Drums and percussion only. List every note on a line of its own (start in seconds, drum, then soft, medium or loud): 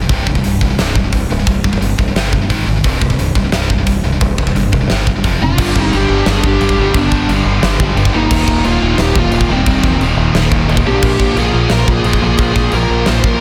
0.09 kick medium
0.09 open hi-hat soft
0.27 kick medium
0.35 kick medium
0.44 open hi-hat soft
0.61 kick medium
0.79 snare medium
0.79 open hi-hat soft
0.95 kick medium
1.12 kick medium
1.12 open hi-hat soft
1.47 kick loud
1.47 open hi-hat soft
1.64 kick medium
1.73 kick medium
1.82 open hi-hat soft
1.99 kick medium
2.16 snare loud
2.16 open hi-hat soft
2.33 kick medium
2.50 kick medium
2.50 open hi-hat soft
2.84 kick medium
2.84 open hi-hat soft
3.02 kick medium
3.10 kick medium
3.19 open hi-hat soft
3.35 kick medium
3.52 snare loud
3.52 open hi-hat soft
3.70 kick medium
3.87 kick medium
3.87 open hi-hat medium
4.21 kick loud
4.21 open hi-hat soft
4.38 kick medium
4.47 kick medium
4.56 open hi-hat soft
4.73 kick medium
4.90 snare medium
4.90 open hi-hat soft
5.07 kick medium
5.24 kick medium
5.24 open hi-hat soft
5.58 kick loud
5.58 crash loud
5.58 china medium
5.76 kick loud
5.93 china medium
6.26 snare loud
6.26 china medium
6.44 kick loud
6.61 china medium
6.69 kick medium
6.94 kick loud
6.94 china medium
7.12 kick loud
7.29 china medium
7.63 snare loud
7.63 china medium
7.80 kick loud
7.97 china medium
8.05 kick medium
8.31 kick loud
8.31 china medium
8.31 crash loud
8.48 kick loud
8.64 china medium
8.98 snare loud
8.98 china medium
9.16 kick loud
9.32 china medium
9.41 kick medium
9.66 kick loud
9.66 china medium
9.84 kick loud
10.01 china medium
10.35 snare loud
10.35 china medium
10.52 kick medium
10.69 china medium
10.77 kick loud
11.02 kick loud
11.02 china medium
11.02 crash loud
11.20 kick loud
11.37 china medium
11.70 snare loud
11.70 china medium
11.88 kick medium
12.04 china medium
12.13 kick loud
12.38 kick loud
12.38 china medium
12.56 kick loud
12.72 china medium
13.06 snare loud
13.06 china medium
13.24 kick medium